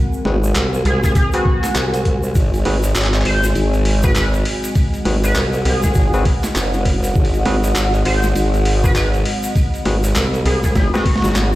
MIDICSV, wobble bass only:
0, 0, Header, 1, 2, 480
1, 0, Start_track
1, 0, Tempo, 600000
1, 1883, Time_signature, 4, 2, 24, 8
1, 9241, End_track
2, 0, Start_track
2, 0, Title_t, "Wobble bass"
2, 0, Program_c, 0, 39
2, 201, Note_on_c, 0, 32, 99
2, 428, Note_off_c, 0, 32, 0
2, 442, Note_on_c, 0, 36, 98
2, 668, Note_off_c, 0, 36, 0
2, 681, Note_on_c, 0, 36, 98
2, 908, Note_off_c, 0, 36, 0
2, 1401, Note_on_c, 0, 36, 97
2, 1868, Note_off_c, 0, 36, 0
2, 1883, Note_on_c, 0, 32, 93
2, 2108, Note_off_c, 0, 32, 0
2, 2123, Note_on_c, 0, 32, 100
2, 2348, Note_off_c, 0, 32, 0
2, 2363, Note_on_c, 0, 32, 95
2, 2588, Note_off_c, 0, 32, 0
2, 2603, Note_on_c, 0, 32, 94
2, 2828, Note_off_c, 0, 32, 0
2, 2842, Note_on_c, 0, 32, 100
2, 3548, Note_off_c, 0, 32, 0
2, 4044, Note_on_c, 0, 32, 100
2, 4269, Note_off_c, 0, 32, 0
2, 4284, Note_on_c, 0, 36, 97
2, 4509, Note_off_c, 0, 36, 0
2, 4524, Note_on_c, 0, 36, 100
2, 4749, Note_off_c, 0, 36, 0
2, 4763, Note_on_c, 0, 32, 104
2, 4988, Note_off_c, 0, 32, 0
2, 5244, Note_on_c, 0, 30, 103
2, 5709, Note_off_c, 0, 30, 0
2, 5723, Note_on_c, 0, 32, 94
2, 5948, Note_off_c, 0, 32, 0
2, 5962, Note_on_c, 0, 32, 96
2, 6188, Note_off_c, 0, 32, 0
2, 6203, Note_on_c, 0, 32, 102
2, 6428, Note_off_c, 0, 32, 0
2, 6443, Note_on_c, 0, 32, 95
2, 6668, Note_off_c, 0, 32, 0
2, 6683, Note_on_c, 0, 32, 100
2, 7388, Note_off_c, 0, 32, 0
2, 7884, Note_on_c, 0, 32, 99
2, 8109, Note_off_c, 0, 32, 0
2, 8122, Note_on_c, 0, 36, 97
2, 8348, Note_off_c, 0, 36, 0
2, 8364, Note_on_c, 0, 36, 96
2, 8589, Note_off_c, 0, 36, 0
2, 8603, Note_on_c, 0, 32, 101
2, 8727, Note_off_c, 0, 32, 0
2, 8992, Note_on_c, 0, 32, 96
2, 9241, Note_off_c, 0, 32, 0
2, 9241, End_track
0, 0, End_of_file